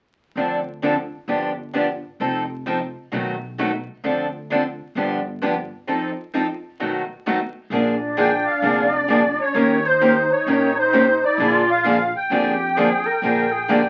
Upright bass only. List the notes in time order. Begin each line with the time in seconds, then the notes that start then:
0.35 D2
1.28 G1
2.20 F1
3.12 B1
4.04 D2
4.95 G1
7.70 A#1
8.62 F1
9.54 D#2
10.46 A#1
11.38 A#1
12.30 F2
13.22 A#1